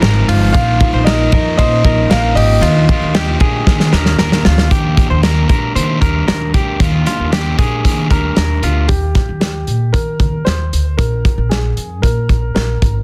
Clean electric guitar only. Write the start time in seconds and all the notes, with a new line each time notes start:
0.02 A#4
0.28 F4
0.54 F4
0.94 C5
1.06 A#4
1.34 A#4
1.59 C5
1.85 A#4
2.11 A#4
2.37 G4
2.62 F4
2.89 F4
3.15 G4
3.41 G#4
3.93 A#4
4.19 A#4
4.45 F4
4.71 G4
5.10 C5
5.23 A#4
5.49 A#4
5.76 C5
6.01 A#4
6.28 A#4
6.55 G4
6.80 F4
7.07 F4
7.33 G4
7.59 G#4
8.11 A#4
8.37 A#4
8.64 F4